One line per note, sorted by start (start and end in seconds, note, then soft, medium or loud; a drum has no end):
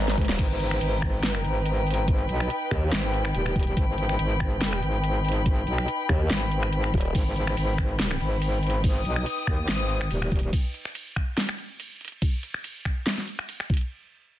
0.00 0.16 G#1 loud
0.00 10.53 D#4 medium
0.00 10.53 B4 medium
0.00 0.22 G#5 loud
0.00 2.16 A#5 medium
0.00 swell medium
0.08 10.53 G5 medium
0.08 snare medium
0.18 0.27 G#1 loud
0.18 kick loud
0.18 closed hi-hat soft
0.21 closed hi-hat medium
0.25 closed hi-hat medium
0.29 0.37 D#1 medium
0.29 snare medium
0.29 closed hi-hat soft
0.39 0.80 G#1 medium
0.39 kick loud
0.39 closed hi-hat medium
0.39 crash medium
0.60 closed hi-hat medium
0.71 finger snap medium
0.81 1.25 G#1 loud
0.81 closed hi-hat medium
1.02 finger snap medium
1.02 kick medium
1.02 closed hi-hat medium
1.23 1.43 G1 loud
1.23 snare loud
1.23 closed hi-hat medium
1.35 finger snap medium
1.45 2.27 G#1 loud
1.45 closed hi-hat medium
1.66 closed hi-hat medium
1.87 closed hi-hat medium
1.91 closed hi-hat medium
1.94 closed hi-hat medium
1.98 closed hi-hat soft
2.08 kick loud
2.08 closed hi-hat medium
2.14 8.92 B5 medium
2.29 2.49 B1 loud
2.29 closed hi-hat medium
2.40 finger snap soft
2.50 closed hi-hat medium
2.71 2.91 D#2 loud
2.71 finger snap medium
2.71 kick medium
2.71 closed hi-hat medium
2.92 3.33 G#1 loud
2.92 snare loud
2.92 closed hi-hat medium
3.13 closed hi-hat medium
3.25 finger snap medium
3.35 3.75 D#1 loud
3.35 closed hi-hat medium
3.46 finger snap medium
3.56 kick loud
3.56 closed hi-hat medium
3.59 closed hi-hat medium
3.63 closed hi-hat medium
3.77 4.18 G#1 loud
3.77 kick loud
3.77 closed hi-hat medium
3.98 closed hi-hat medium
4.09 finger snap medium
4.19 4.81 G#1 loud
4.19 closed hi-hat medium
4.40 finger snap medium
4.40 kick medium
4.40 closed hi-hat medium
4.61 snare loud
4.61 closed hi-hat medium
4.73 finger snap medium
4.83 5.65 G#1 loud
4.83 closed hi-hat medium
5.04 closed hi-hat medium
5.25 closed hi-hat soft
5.29 closed hi-hat medium
5.32 closed hi-hat medium
5.46 kick loud
5.46 closed hi-hat medium
5.67 5.87 B1 loud
5.67 closed hi-hat medium
5.78 finger snap medium
5.88 closed hi-hat medium
6.09 6.29 D#2 loud
6.09 finger snap medium
6.09 kick medium
6.09 closed hi-hat medium
6.30 6.92 G#1 loud
6.30 snare loud
6.30 closed hi-hat medium
6.52 closed hi-hat medium
6.63 finger snap medium
6.73 closed hi-hat medium
6.84 finger snap medium
6.94 7.13 D#1 loud
6.94 kick loud
6.94 closed hi-hat soft
6.97 closed hi-hat medium
7.01 closed hi-hat medium
7.05 closed hi-hat soft
7.15 7.56 G#1 medium
7.15 kick loud
7.15 closed hi-hat medium
7.15 ride medium
7.36 closed hi-hat medium
7.47 finger snap medium
7.57 8.19 G#1 loud
7.57 closed hi-hat medium
7.57 ride soft
7.78 finger snap medium
7.78 kick medium
7.78 closed hi-hat medium
7.99 snare loud
7.99 closed hi-hat medium
7.99 ride medium
8.11 finger snap medium
8.21 9.04 G#1 loud
8.21 closed hi-hat medium
8.42 closed hi-hat medium
8.42 ride soft
8.63 closed hi-hat soft
8.67 closed hi-hat medium
8.70 closed hi-hat medium
8.74 closed hi-hat soft
8.84 kick loud
8.84 closed hi-hat medium
8.84 ride medium
8.90 10.55 D#6 medium
9.05 9.25 B1 loud
9.05 closed hi-hat medium
9.16 finger snap medium
9.26 closed hi-hat medium
9.26 ride soft
9.47 9.67 D#2 loud
9.47 finger snap medium
9.47 kick medium
9.47 closed hi-hat soft
9.68 10.09 G#1 loud
9.68 snare loud
9.68 closed hi-hat medium
9.68 ride medium
9.90 closed hi-hat medium
10.01 finger snap medium
10.11 10.51 D#1 loud
10.11 closed hi-hat medium
10.11 ride soft
10.22 finger snap medium
10.32 kick loud
10.32 closed hi-hat soft
10.36 closed hi-hat medium
10.39 closed hi-hat medium
10.43 closed hi-hat soft
10.53 kick loud
10.53 closed hi-hat medium
10.53 ride medium
10.74 closed hi-hat medium
10.85 finger snap medium
10.95 closed hi-hat medium
10.95 ride soft
11.16 finger snap medium
11.16 kick medium
11.16 closed hi-hat soft
11.37 snare loud
11.37 closed hi-hat medium
11.37 ride medium
11.49 finger snap medium
11.59 closed hi-hat medium
11.80 closed hi-hat medium
11.80 ride soft
12.01 closed hi-hat soft
12.05 closed hi-hat medium
12.08 closed hi-hat medium
12.12 closed hi-hat soft
12.22 kick loud
12.22 closed hi-hat medium
12.22 ride medium
12.43 closed hi-hat medium
12.54 finger snap medium
12.64 closed hi-hat medium
12.64 ride soft
12.85 finger snap medium
12.85 kick medium
12.85 closed hi-hat medium
13.07 snare loud
13.07 closed hi-hat medium
13.07 ride medium
13.18 snare soft
13.28 closed hi-hat medium
13.39 finger snap medium
13.49 closed hi-hat medium
13.49 ride soft
13.60 finger snap medium
13.70 kick loud
13.70 closed hi-hat medium
13.74 closed hi-hat medium
13.77 closed hi-hat medium
13.81 closed hi-hat soft